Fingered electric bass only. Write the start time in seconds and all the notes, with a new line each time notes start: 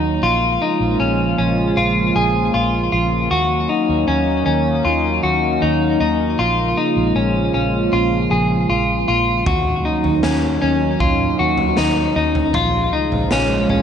Already playing: D#2
0.22 A#1
0.80 A#1
1.00 A#1
1.39 A#1
1.77 A#1
2.16 A#1
2.54 A#1
2.93 A#1
3.31 D#2
3.89 D#2
4.08 D#2
4.47 D#2
4.85 D#2
5.24 D#2
5.62 D#2
6.01 D#2
6.39 A#1
6.96 A#1
7.15 A#1
7.54 A#1
7.93 A#1
8.31 A#1
8.70 A#1
9.08 A#1
9.47 D#2
10.05 D#2
10.24 D#2
10.62 D#2
11.00 D#2
11.39 D#2
11.78 D#2
12.16 D#2
12.55 A#1
13.12 A#1
13.31 A#1
13.70 A#1